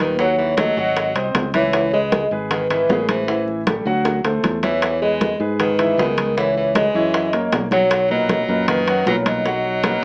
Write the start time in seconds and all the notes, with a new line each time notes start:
Already playing: D#2 A#2 A#4 B4
0.00 D#3 B4, high conga
0.19 F#3 F#4 C#5 F#5, high bongo, high conga
0.38 E3 C#5, high bongo, high conga
0.57 F#3 A3 A4 C#5 D#5, high bongo, high conga, high timbale
0.77 G#1 F#3 F#4 F#5, high bongo, high conga
0.96 high bongo, high conga, high timbale
1.15 C2 C4 C5 D#5, high conga, high timbale
1.35 C#2, high bongo, low bongo, high conga, high timbale, low timbale
1.54 E3 E4 C#5 E5, high bongo, high conga, high timbale
1.73 high bongo, high conga, high timbale
1.93 G#3 G#4 B4 D#5, high conga
2.12 high bongo, high conga, high timbale
2.31 G#1 G#3 G#4 B4, high conga
2.51 D#3 B4, high bongo, high conga, low conga, high timbale
2.70 D#3 E3 E4 B4 E5, high conga, low conga, high timbale
2.89 A1 C#3 G#3 G#4 A#4 B4, high bongo, low bongo, high conga, low timbale
3.09 E3 C5, high conga, high timbale
3.28 E3 E4 E5, high bongo, high conga
3.47 high bongo, high conga
3.67 G3 G4 A4, high bongo, high conga, high timbale
3.85 D2 F#3 F#4 F#5, high bongo, high conga
4.05 high bongo, high conga, high timbale
4.24 D2 A3 A4 C5, high bongo, high conga, high timbale
4.43 E2, low bongo, high conga, high timbale
4.63 E3 E4 C#5 E5, low bongo, high conga, high timbale
4.82 high bongo, high conga, high timbale
5.01 G#3 G#4 B4 D#5, high conga
5.21 high bongo, high conga, high timbale
5.40 G#2 G#3 G#4 B4, high conga
5.60 D#3 B4, high bongo, high conga, low conga, high timbale
5.79 E3 E4 E5, high conga, low conga, high timbale
5.98 C#2 D#3 G#3 B3 G#4 A#4, high bongo, low bongo, high conga
6.17 high conga, high timbale
6.37 E3 E4 C#5 E5, high bongo, high conga
6.56 E3 C#5, high bongo, high conga
6.75 G#3 G#4 B4 D#5, high bongo, high conga, high timbale
6.94 F#2 E3 E4 C#5, high bongo, high conga
7.14 high bongo, high conga, high timbale
7.33 A#3 A#4 C#5, high conga, high timbale
7.52 B1, high bongo, low bongo, high conga, high timbale, low timbale
7.71 F#3 F#4 C#5 F#5, high bongo, high conga, high timbale
7.91 high bongo, high conga, high timbale
8.10 A#2 F#3 A#4 B4 D#5, high conga
8.29 high bongo, high conga, high timbale
8.48 F#2 A#2 A#4 B4, high conga
8.68 D#3 B4, high bongo, high conga, low conga, high timbale
8.87 F#3 F#4 F#5, high conga, high timbale
9.06 B1 A#2 F#3 A#4 B4 C#5, high bongo, low bongo, high conga
9.26 F#3 D#5, high conga, high timbale
9.45 F#3 F#4 F#5, high bongo, high conga
9.64 high bongo, high conga
9.84 A#3 A#4 B4, high bongo, high conga, high timbale